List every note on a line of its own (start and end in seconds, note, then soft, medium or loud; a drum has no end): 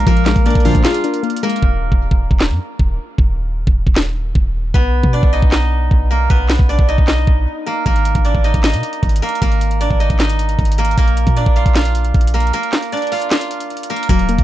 0.00 0.25 G#3 medium
0.00 0.45 A#3 medium
0.00 0.45 D4 medium
0.00 0.46 D4 medium
0.00 0.26 F4 medium
0.00 0.65 F4 medium
0.00 0.45 D5 medium
0.00 0.65 F5 medium
0.00 closed hi-hat medium
0.07 0.35 A#1 loud
0.07 1.04 F3 medium
0.07 1.43 A#3 medium
0.07 0.81 A#4 loud
0.07 1.43 A#4 loud
0.07 kick loud
0.07 closed hi-hat medium
0.17 closed hi-hat medium
0.26 1.24 G#3 medium
0.26 snare loud
0.26 clap medium
0.26 closed hi-hat medium
0.36 0.55 A#1 loud
0.36 kick loud
0.36 closed hi-hat medium
0.46 1.22 A#3 medium
0.46 3.26 D4 medium
0.46 2.30 D5 medium
0.46 closed hi-hat soft
0.50 closed hi-hat soft
0.55 0.74 A#1 loud
0.55 kick loud
0.55 closed hi-hat medium
0.60 closed hi-hat medium
0.65 0.82 D2 loud
0.65 0.82 A#2 loud
0.65 0.82 F3 loud
0.65 1.03 D4 loud
0.65 0.85 F4 medium
0.65 0.84 F5 medium
0.65 open hi-hat medium
0.75 0.84 A#1 loud
0.75 kick loud
0.75 closed hi-hat medium
0.84 1.63 F4 medium
0.84 3.38 F4 medium
0.84 1.03 G#4 medium
0.84 2.51 F5 medium
0.84 snare loud
0.84 clap medium
0.84 closed hi-hat medium
0.94 closed hi-hat medium
1.04 1.63 D4 medium
1.04 1.23 A#4 medium
1.04 closed hi-hat medium
1.14 closed hi-hat medium
1.23 1.62 A#3 loud
1.23 closed hi-hat soft
1.30 closed hi-hat medium
1.37 closed hi-hat medium
1.43 1.63 G#3 medium
1.43 4.65 A#3 medium
1.43 3.55 A#4 medium
1.43 closed hi-hat soft
1.50 closed hi-hat medium
1.56 closed hi-hat medium
1.63 1.91 D#1 loud
1.63 kick loud
1.92 2.10 D#1 loud
1.92 kick loud
2.11 2.30 D#1 loud
2.11 kick loud
2.31 2.52 D#1 loud
2.31 kick loud
2.40 snare loud
2.40 clap medium
2.50 2.59 F#2 loud
2.79 2.98 D#1 loud
2.79 kick medium
3.18 3.65 D#1 loud
3.18 kick loud
3.67 3.86 D#1 loud
3.67 kick loud
3.87 4.33 D#1 loud
3.87 kick loud
3.96 snare loud
3.96 clap medium
4.35 4.73 D#1 loud
4.35 kick medium
4.74 5.02 B1 loud
4.74 6.17 B3 medium
4.74 6.17 B4 medium
4.74 kick loud
5.03 5.22 B2 loud
5.03 kick medium
5.13 5.39 D4 medium
5.13 5.39 D5 medium
5.23 5.42 B1 loud
5.23 kick loud
5.33 5.53 D#4 medium
5.33 5.52 D#5 medium
5.42 5.89 B1 loud
5.42 kick loud
5.52 6.75 D#4 medium
5.52 6.75 D#5 medium
5.52 snare loud
5.52 clap medium
5.91 6.29 B1 loud
5.91 kick loud
6.11 6.36 A#3 medium
6.11 6.36 A#4 medium
6.30 6.58 B1 loud
6.30 7.72 B3 medium
6.30 7.72 B4 loud
6.30 kick loud
6.49 snare loud
6.49 clap medium
6.59 6.78 B1 loud
6.59 kick loud
6.69 6.95 D4 medium
6.69 6.95 D5 medium
6.79 6.97 B1 loud
6.79 kick loud
6.89 7.09 D#4 medium
6.89 7.08 D#5 medium
6.98 7.26 B1 loud
6.98 kick loud
7.08 8.31 D#4 medium
7.08 8.31 D#5 medium
7.08 snare loud
7.08 clap medium
7.27 7.47 B1 loud
7.27 kick medium
7.66 7.86 A#3 medium
7.66 7.86 A#4 medium
7.86 8.14 G#1 loud
7.86 9.23 A#3 medium
7.86 9.22 A#4 loud
7.86 kick loud
7.86 closed hi-hat medium
7.96 closed hi-hat medium
8.05 closed hi-hat medium
8.15 8.34 G#1 loud
8.15 kick loud
8.15 closed hi-hat medium
8.25 8.50 D4 medium
8.25 8.50 D5 medium
8.25 closed hi-hat medium
8.35 8.53 G#1 loud
8.35 kick loud
8.44 8.64 D#4 medium
8.44 8.63 D#5 medium
8.44 closed hi-hat medium
8.54 8.75 G#1 loud
8.54 kick loud
8.54 closed hi-hat medium
8.64 9.87 D#4 medium
8.64 9.87 D#5 medium
8.64 snare loud
8.64 clap medium
8.64 closed hi-hat medium
8.74 8.83 B2 loud
8.74 closed hi-hat medium
8.83 closed hi-hat medium
8.93 closed hi-hat medium
9.03 9.22 G#1 loud
9.03 kick medium
9.03 closed hi-hat soft
9.09 closed hi-hat medium
9.16 closed hi-hat medium
9.22 9.42 A#3 medium
9.22 9.41 A#4 medium
9.22 closed hi-hat medium
9.29 closed hi-hat medium
9.35 closed hi-hat medium
9.42 9.89 G#1 loud
9.42 10.79 A#3 medium
9.42 10.78 A#4 loud
9.42 kick loud
9.42 closed hi-hat medium
9.52 closed hi-hat medium
9.61 closed hi-hat medium
9.71 closed hi-hat medium
9.81 10.06 D4 medium
9.81 10.06 D5 medium
9.81 closed hi-hat medium
9.91 10.09 G#1 loud
9.91 kick loud
10.00 10.20 D#4 medium
10.00 10.19 D#5 medium
10.00 closed hi-hat medium
10.10 10.57 G#1 loud
10.10 kick loud
10.10 closed hi-hat medium
10.20 11.43 D#4 medium
10.20 11.43 D#5 medium
10.20 snare loud
10.20 clap medium
10.20 closed hi-hat medium
10.30 closed hi-hat medium
10.39 closed hi-hat medium
10.49 closed hi-hat medium
10.59 10.96 G#1 loud
10.59 kick loud
10.59 closed hi-hat soft
10.65 closed hi-hat medium
10.72 closed hi-hat medium
10.78 10.98 A#3 medium
10.78 10.97 A#4 medium
10.78 closed hi-hat medium
10.85 closed hi-hat medium
10.91 closed hi-hat medium
10.98 11.26 A#1 loud
10.98 12.34 A#3 medium
10.98 12.34 A#4 medium
10.98 kick loud
10.98 closed hi-hat medium
11.08 closed hi-hat medium
11.17 closed hi-hat medium
11.27 11.46 A#2 loud
11.27 kick loud
11.27 closed hi-hat medium
11.37 12.93 D4 medium
11.37 12.92 D5 medium
11.37 closed hi-hat medium
11.46 11.65 A#1 loud
11.46 kick loud
11.56 11.76 F4 medium
11.56 11.75 F5 medium
11.56 closed hi-hat medium
11.66 12.13 A#1 loud
11.66 kick loud
11.66 closed hi-hat medium
11.75 13.12 F4 medium
11.75 13.12 F5 medium
11.75 snare loud
11.75 clap medium
11.75 closed hi-hat medium
11.85 closed hi-hat medium
11.95 closed hi-hat medium
12.05 closed hi-hat medium
12.14 12.52 A#1 loud
12.14 kick loud
12.14 closed hi-hat soft
12.21 closed hi-hat medium
12.27 closed hi-hat medium
12.34 12.54 A#3 medium
12.34 12.53 A#4 medium
12.34 closed hi-hat medium
12.40 closed hi-hat medium
12.47 closed hi-hat medium
12.53 13.90 A#3 medium
12.53 13.90 A#4 loud
12.53 closed hi-hat medium
12.63 closed hi-hat medium
12.73 snare loud
12.73 clap medium
12.73 closed hi-hat medium
12.83 closed hi-hat medium
12.92 14.44 D4 medium
12.92 14.44 D5 medium
12.92 closed hi-hat soft
12.97 closed hi-hat soft
13.02 closed hi-hat soft
13.07 closed hi-hat soft
13.12 13.32 F4 medium
13.12 13.31 F5 medium
13.12 open hi-hat medium
13.22 closed hi-hat medium
13.31 14.44 F4 medium
13.31 14.44 F5 medium
13.31 snare loud
13.31 clap medium
13.31 closed hi-hat medium
13.41 closed hi-hat medium
13.51 closed hi-hat medium
13.60 closed hi-hat medium
13.70 closed hi-hat soft
13.77 closed hi-hat medium
13.83 closed hi-hat medium
13.90 14.10 A#3 medium
13.90 14.09 A#4 medium
13.90 closed hi-hat soft
13.96 closed hi-hat medium
14.03 closed hi-hat medium
14.09 14.37 D#1 loud
14.09 14.44 F#3 medium
14.09 14.44 A#3 medium
14.09 14.44 A#4 loud
14.09 kick loud
14.09 closed hi-hat medium
14.19 closed hi-hat medium
14.29 14.44 A#3 medium
14.29 closed hi-hat medium
14.38 14.44 D#1 loud
14.38 kick medium
14.38 closed hi-hat medium